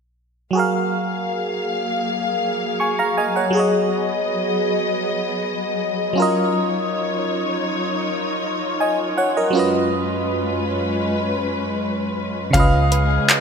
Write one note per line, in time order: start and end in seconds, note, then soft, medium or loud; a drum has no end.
0.51 3.48 F#3 medium
0.51 9.50 F#3 medium
0.51 3.51 A#3 medium
0.51 3.50 F#4 medium
0.51 6.13 G#4 medium
0.51 3.51 F5 medium
0.55 3.51 G#4 medium
0.55 3.52 A#4 medium
0.59 2.78 F5 medium
2.80 2.98 G#5 soft
2.80 2.97 C#6 medium
2.99 3.16 F5 medium
2.99 3.16 A#5 medium
3.17 3.35 D#5 medium
3.17 3.35 G#5 medium
3.36 3.56 C#5 soft
3.36 3.71 F#5 medium
3.50 6.11 F#3 medium
3.50 6.14 B3 medium
3.50 6.12 F#4 medium
3.50 6.14 D#5 medium
3.55 6.13 G#4 medium
3.55 6.14 C#5 medium
3.59 6.15 D#5 medium
6.13 9.11 F#3 medium
6.13 9.12 C#4 medium
6.13 9.51 D#4 medium
6.13 12.50 F4 medium
6.13 9.51 C#5 medium
6.17 9.13 F4 medium
6.17 8.77 A#4 medium
6.22 8.78 D#5 medium
8.80 9.16 D#5 medium
8.80 9.15 G#5 medium
9.18 9.35 C#5 medium
9.18 9.35 F#5 medium
9.37 9.72 A#4 medium
9.37 9.58 D#5 medium
9.50 12.51 F#2 medium
9.50 12.48 F#3 medium
9.50 12.51 G#3 medium
9.50 12.50 C#4 medium
9.50 12.51 C#4 medium
9.50 12.51 B4 medium
9.55 12.51 F4 medium
9.55 12.52 B4 medium
9.59 12.53 D#5 medium
12.51 13.19 C#2 loud
12.51 13.40 C#3 medium
12.51 13.40 G#3 medium
12.51 13.40 B3 medium
12.51 13.40 C#4 medium
12.51 13.40 G#4 medium
12.51 13.40 F5 loud
12.51 kick loud
12.51 closed hi-hat medium
12.55 13.40 F4 medium
12.55 13.40 B4 medium
12.60 13.40 D#5 medium
12.92 13.40 B4 medium
12.92 closed hi-hat medium
13.29 clap loud
13.29 closed hi-hat medium